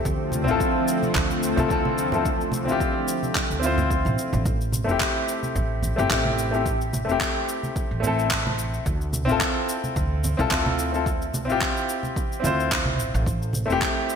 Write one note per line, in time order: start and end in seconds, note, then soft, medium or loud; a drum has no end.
0.05 0.48 D2 loud
0.05 4.42 D3 medium
0.05 4.42 F3 medium
0.05 4.42 A3 medium
0.05 4.42 C4 medium
0.05 kick medium
0.05 shaker soft
0.32 high conga medium
0.32 shaker medium
0.44 0.56 A1 medium
0.44 1.52 C4 medium
0.44 1.54 E4 medium
0.48 1.55 F4 medium
0.48 1.56 A4 loud
0.48 shaker soft
0.60 kick loud
0.60 shaker soft
0.88 shaker medium
1.03 high conga medium
1.03 shaker soft
1.15 1.51 D2 loud
1.15 kick loud
1.15 clap medium
1.15 shaker soft
1.31 shaker soft
1.43 shaker medium
1.56 1.66 C2 medium
1.56 1.66 C4 medium
1.56 1.67 E4 medium
1.56 1.68 F4 medium
1.56 1.68 A4 loud
1.56 low conga medium
1.56 shaker soft
1.68 2.68 D2 medium
1.68 2.08 C4 medium
1.68 2.09 E4 medium
1.68 2.09 F4 medium
1.68 2.10 A4 loud
1.68 kick loud
1.68 shaker soft
1.85 high conga medium
1.98 shaker medium
2.12 2.26 C4 medium
2.12 2.26 E4 medium
2.12 2.27 F4 medium
2.12 2.27 A4 medium
2.12 low conga medium
2.12 shaker soft
2.25 kick loud
2.25 shaker soft
2.41 shaker soft
2.52 high conga medium
2.52 shaker medium
2.65 2.77 A1 medium
2.65 3.58 C4 medium
2.65 3.60 E4 medium
2.65 shaker soft
2.69 3.61 F4 medium
2.69 3.62 G4 medium
2.80 kick loud
2.80 shaker soft
3.08 shaker medium
3.23 high conga medium
3.23 shaker soft
3.35 kick loud
3.35 clap medium
3.35 shaker soft
3.50 4.05 D2 medium
3.50 shaker soft
3.59 4.42 C4 medium
3.59 4.43 E4 medium
3.59 shaker medium
3.64 4.45 F4 medium
3.64 4.46 C5 loud
3.78 low conga medium
3.78 shaker soft
3.90 kick medium
3.90 shaker soft
4.05 4.14 A1 loud
4.05 high conga medium
4.05 shaker soft
4.18 shaker medium
4.33 4.42 A1 medium
4.33 low conga medium
4.33 shaker soft
4.45 4.88 A1 loud
4.45 kick loud
4.45 shaker soft
4.61 shaker soft
4.72 high conga medium
4.72 shaker medium
4.84 4.97 E1 medium
4.84 5.93 A3 medium
4.84 5.94 C4 medium
4.89 5.95 E4 medium
4.89 5.96 G4 loud
4.89 shaker soft
5.00 kick loud
5.00 clap loud
5.00 shaker soft
5.28 shaker medium
5.43 high conga medium
5.43 shaker soft
5.56 5.91 A1 medium
5.56 kick loud
5.56 shaker soft
5.83 low conga medium
5.83 shaker medium
5.96 6.07 G1 medium
5.96 6.07 A3 medium
5.96 6.07 C4 medium
5.96 6.08 E4 medium
5.96 6.08 G4 loud
5.96 shaker soft
6.09 7.08 A1 medium
6.09 6.49 A3 medium
6.09 6.49 C4 medium
6.09 6.50 E4 medium
6.09 6.51 G4 loud
6.09 kick loud
6.09 clap loud
6.09 shaker soft
6.25 high conga medium
6.38 shaker medium
6.51 6.66 A3 medium
6.51 6.66 C4 medium
6.51 6.67 E4 medium
6.51 6.67 G4 medium
6.51 shaker soft
6.66 kick loud
6.66 shaker soft
6.81 shaker soft
6.93 high conga medium
6.93 shaker medium
7.05 7.17 E1 medium
7.05 7.98 A3 medium
7.05 8.00 C4 medium
7.09 8.01 E4 medium
7.09 8.02 G4 medium
7.09 shaker soft
7.21 kick loud
7.21 clap loud
7.21 shaker soft
7.49 shaker medium
7.63 high conga medium
7.63 shaker soft
7.76 kick loud
7.76 shaker soft
7.91 8.80 A1 medium
8.00 8.83 A3 medium
8.00 8.84 C4 medium
8.00 low conga medium
8.00 shaker medium
8.05 8.85 E4 medium
8.05 8.86 A4 loud
8.19 shaker soft
8.31 kick loud
8.31 clap loud
8.31 shaker soft
8.47 high conga medium
8.59 shaker medium
8.74 shaker soft
8.86 9.28 D2 loud
8.86 kick loud
8.86 shaker soft
9.01 shaker soft
9.13 high conga medium
9.13 shaker medium
9.25 9.37 A1 medium
9.25 10.33 C4 loud
9.25 10.34 E4 medium
9.25 shaker soft
9.29 10.36 F4 medium
9.29 10.37 A4 loud
9.41 kick loud
9.41 clap loud
9.41 shaker soft
9.69 shaker medium
9.84 high conga medium
9.84 shaker soft
9.96 10.32 D2 loud
9.96 kick loud
9.96 shaker medium
10.24 low conga medium
10.24 shaker medium
10.37 10.48 C2 loud
10.37 10.47 C4 loud
10.37 10.48 E4 medium
10.37 10.48 F4 medium
10.37 10.49 A4 loud
10.37 shaker soft
10.49 11.48 D2 medium
10.49 10.89 C4 medium
10.49 10.90 E4 medium
10.49 10.90 F4 medium
10.49 10.91 A4 loud
10.49 kick loud
10.49 clap loud
10.49 shaker soft
10.66 high conga loud
10.79 shaker medium
10.92 11.06 C4 medium
10.92 11.07 E4 medium
10.92 11.07 F4 medium
10.92 11.08 A4 medium
10.92 shaker soft
11.06 kick loud
11.06 shaker soft
11.22 shaker soft
11.34 high conga medium
11.34 shaker medium
11.45 11.57 A1 medium
11.45 12.38 C4 medium
11.45 12.40 E4 medium
11.49 12.41 F4 medium
11.49 12.42 G4 loud
11.49 shaker soft
11.61 kick loud
11.61 clap loud
11.61 shaker soft
11.77 shaker soft
11.89 shaker medium
12.03 high conga medium
12.03 shaker soft
12.16 kick loud
12.16 shaker soft
12.32 shaker soft
12.40 12.99 D2 loud
12.40 13.23 C4 medium
12.40 13.24 E4 medium
12.44 13.25 F4 medium
12.44 13.26 C5 loud
12.44 low conga medium
12.44 shaker medium
12.60 shaker soft
12.71 kick loud
12.71 clap loud
12.71 shaker soft
12.85 high conga loud
12.99 13.10 A1 medium
12.99 shaker medium
13.14 13.23 A1 loud
13.14 shaker soft
13.26 13.69 A1 medium
13.26 kick loud
13.26 shaker soft
13.42 shaker soft
13.53 high conga medium
13.53 shaker medium
13.66 13.78 E1 medium
13.66 14.15 A3 medium
13.66 14.15 C4 medium
13.70 14.15 E4 medium
13.70 14.15 G4 loud
13.70 shaker soft
13.81 kick loud
13.81 clap medium
13.81 shaker soft
14.10 shaker medium